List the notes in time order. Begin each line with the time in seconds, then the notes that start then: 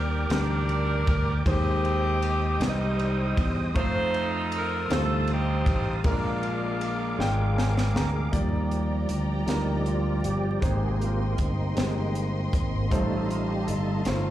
Already playing: D#2 D#3 G3 D4 D#4 G4 A#4 D5 G5 D6
0.30 D2 G3 D4 G4 A#4, snare, ride
0.69 ride
1.07 D2, kick, ride
1.46 D#2 D#3 G#3 C4 D#4 G4 C5 D#5 D#6, kick, ride
1.85 ride
2.22 ride
2.60 C2 G3 D#4 G4 D5, snare, ride
2.64 G3 C4 D#4
2.68 D#5
2.99 ride
3.37 E2, kick, ride
3.74 F2 A3 D#4 F4 A4 C5 F5 A5, kick, ride
3.78 C5
4.14 ride
4.52 ride
4.57 A#4
4.90 D2 G3 D#4 F4 A4 C5, snare, ride
4.96 A3
5.27 ride
5.32 C4 D#4 G4
5.66 A1, kick, ride
6.04 A#1 A#2 G#3 C4 F4 G#4 A#4 D6, kick, ride
6.10 G#3 D4 F4
6.43 ride
6.81 ride
7.18 G#1 G#3 D4 F4 G5, snare
7.57 G#5, snare
7.78 snare
7.94 D2 A#5, snare
8.32 D#2 F3 G3 A#3 D#4 G4 D5 G5 A#5, kick, closed hi-hat
8.71 closed hi-hat
9.09 D2, closed hi-hat
9.46 D2 A#3 D#4 G4 A#4, snare, closed hi-hat
9.86 F4, closed hi-hat
10.24 G1 G4, closed hi-hat
10.44 G4
10.61 G#1 C3 G#3 A#3 C4 D#4 G4 C5 D#5 G5 C6, kick, closed hi-hat
10.65 G#4
11.01 F4, closed hi-hat
11.25 G4
11.33 F4
11.38 G1 D#4, kick, closed hi-hat
11.75 G1 G#3 D#4 G4 C5, snare, closed hi-hat
12.15 closed hi-hat
12.53 G#1, kick, closed hi-hat
12.90 A1 A2 G3 A3 D#4 F4 A4 C5 F5 A5, kick, closed hi-hat
12.97 A3
13.28 F4, closed hi-hat
13.48 G4
13.67 G1 A4, closed hi-hat
14.05 G1 A3 D#4 F4 C5, snare, closed hi-hat